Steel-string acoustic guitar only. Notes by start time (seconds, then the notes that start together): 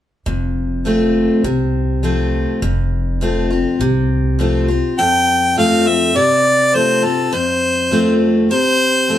0.26 F2
0.85 F3 A3 C4 F4
1.44 C3
2.03 F3 A3 C4 F4
2.62 F2
3.21 F3 A3 C4 F4
3.50 C4 F4
3.81 C3
4.39 F3 A3 C4 F4
4.68 C4 F4
4.99 F2
5.57 F3 A3 C4 F4
5.86 C4 F4
6.16 C3
6.74 F3 A3 C4 F4
7.03 C4 F4
7.33 F2
7.91 F3 A3 C4 F4
8.51 C3
9.08 F3 A3 C4 F4